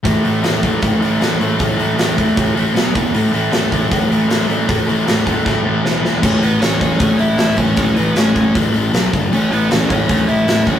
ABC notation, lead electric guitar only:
X:1
M:4/4
L:1/8
Q:1/4=155
K:A
V:1 name="Lead electric guitar"
z8 | z8 | z8 | z8 |
[Cc] [B,B] [Cc] [Cc]2 [Ee]2 [Cc]- | [Cc] [B,B] [Cc]2 z4 | [Cc] [B,B] [Cc] [Cc]2 [Ee]2 [Cc] |]